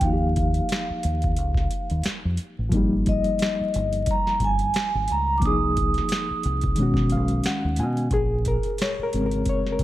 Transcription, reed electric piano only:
0.00 2.66 F3 medium
0.00 2.68 A#3 medium
0.05 2.69 D#4 medium
0.05 0.12 F#4 medium
0.13 2.73 G4 medium
2.69 5.36 F3 medium
2.69 5.38 A#3 medium
2.74 5.40 G3 medium
2.74 5.39 D#4 medium
5.40 6.73 F3 medium
5.40 6.74 A#3 medium
5.45 5.50 D4 soft
5.45 6.76 G#4 medium
5.51 6.79 D#4 medium
6.75 8.08 D#3 medium
6.75 8.09 G#3 medium
6.80 8.10 C#4 medium
6.80 8.12 F#4 medium
7.12 7.43 F5 medium
7.46 7.77 F#5 medium
7.80 8.10 G#5 medium
8.14 8.47 G#4 medium
8.48 8.62 A#4 medium
8.82 9.03 C#5 medium
9.03 9.23 A#4 medium
9.14 9.59 C#3 medium
9.14 9.60 G#3 soft
9.14 9.60 C4 medium
9.26 9.36 A#4 medium
9.49 9.59 C#5 medium
9.72 9.84 A#4 medium

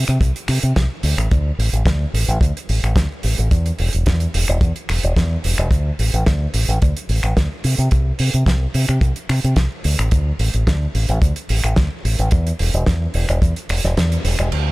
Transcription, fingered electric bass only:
0.09 0.17 C3 medium
0.21 0.31 C2 loud
0.49 0.58 C3 medium
0.63 0.72 C3 medium
0.77 0.86 C2 medium
1.03 1.13 D2 medium
1.18 1.27 A1 loud
1.32 1.50 D2 loud
1.59 1.68 A1 medium
1.73 1.82 A1 medium
1.86 2.05 D2 medium
2.14 2.23 A1 medium
2.28 2.37 A1 loud
2.41 2.51 D2 loud
2.69 2.79 A1 medium
2.83 2.92 A1 medium
2.96 3.06 D2 medium
3.24 3.34 A1 medium
3.39 3.47 A1 loud
3.51 3.70 E2 medium
3.79 3.89 E1 medium
3.94 4.02 E1 medium
4.07 4.25 E2 medium
4.34 4.44 E1 medium
4.49 4.57 E1 medium
4.61 4.71 E2 loud
4.89 4.99 E1 medium
5.04 5.12 E1 medium
5.17 5.35 E2 medium
5.44 5.54 E1 medium
5.59 5.67 E1 medium
5.71 5.90 D2 medium
5.99 6.09 A1 medium
6.14 6.22 A1 medium
6.27 6.46 D2 medium
6.54 6.64 A1 medium
6.68 6.77 A1 medium
6.83 6.92 D2 loud
7.09 7.19 A1 medium
7.24 7.32 A1 medium
7.37 7.46 D2 medium
7.64 7.74 C3 medium
7.79 7.87 C3 loud
7.92 8.11 C2 medium
8.20 8.29 C3 medium
8.34 8.43 C3 medium
8.47 8.65 C2 medium
8.75 8.84 C3 medium
8.89 8.98 C3 loud
9.01 9.11 C2 loud
9.29 9.39 C3 medium
9.44 9.53 C3 medium
9.57 9.66 C2 medium
9.85 9.94 D2 medium
9.99 10.08 A1 loud
10.12 10.31 D2 loud
10.39 10.49 A1 medium
10.54 10.63 A1 medium
10.67 10.86 D2 medium
10.95 11.04 A1 medium
11.09 11.18 A1 loud
11.22 11.31 D2 loud
11.50 11.59 A1 medium
11.64 11.73 A1 medium
11.78 11.87 D2 medium
12.05 12.14 A1 medium
12.19 12.28 A1 loud
12.32 12.51 E2 loud
12.60 12.69 E1 medium
12.74 12.83 E1 medium
12.87 13.06 E2 medium
13.15 13.24 E1 medium
13.29 13.38 E1 loud
13.42 13.52 E2 loud
13.70 13.79 E1 medium
13.84 13.93 E1 medium
13.97 14.16 E2 medium
14.24 14.34 E1 medium
14.39 14.48 E1 loud
14.52 14.72 D2 medium

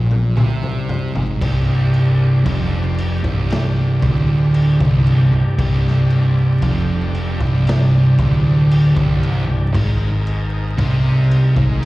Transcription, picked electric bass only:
0.00 0.32 A#1 medium
0.37 1.11 C2 loud
1.15 1.39 G#1 medium
1.41 2.41 C1 loud
2.46 3.20 F1 medium
3.24 3.98 C1 loud
4.02 4.76 D1 medium
4.80 5.28 C1 medium
5.31 5.56 C1 medium
5.58 6.58 C1 loud
6.62 7.36 F1 loud
7.41 8.14 C1 loud
8.18 8.92 D1 loud
8.96 9.44 C1 medium
9.47 9.72 C1 medium
9.74 10.74 G#1 loud
10.78 11.52 C2 loud
11.56 11.85 G#1 loud

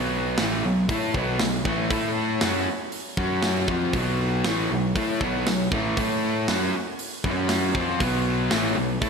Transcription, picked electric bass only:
0.00 0.35 B1 medium
0.39 0.62 A1 medium
0.64 0.88 B1 medium
0.90 1.13 A2 medium
1.15 1.38 B1 medium
1.41 1.64 B1 medium
1.65 1.89 A1 medium
1.91 2.38 A2 medium
2.42 2.66 F#2 medium
3.18 3.65 F#2 medium
3.69 3.93 F2 medium
3.94 4.41 B1 medium
4.46 4.69 A1 medium
4.71 4.94 B1 medium
4.96 5.20 A2 medium
5.21 5.45 B1 medium
5.47 5.71 B1 medium
5.72 5.96 A1 medium
5.98 6.45 A2 medium
6.49 6.72 F#2 medium
7.24 7.72 F#2 medium
7.75 7.99 F2 medium
8.01 8.48 B1 medium
8.52 8.75 A1 medium
8.77 9.01 B1 medium
9.02 9.10 A2 medium

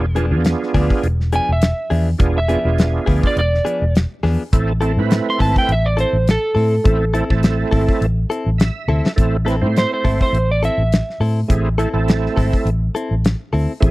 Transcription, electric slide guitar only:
0.00 0.14 D5 loud
1.36 1.49 G#5 loud
1.53 2.07 E5 medium
2.38 3.21 E5 medium
3.27 3.38 D5 medium
3.39 3.94 D5 loud
5.30 5.41 C6 medium
5.41 5.56 A5 medium
5.58 5.70 G5 medium
5.72 5.86 E5 loud
5.86 5.98 D5 medium
6.00 6.27 C5 medium
6.31 7.99 A4 loud
9.78 9.93 C5 loud
9.94 10.21 C5 medium
10.22 10.50 C5 medium
10.51 10.63 D5 medium
10.65 11.20 E5 medium

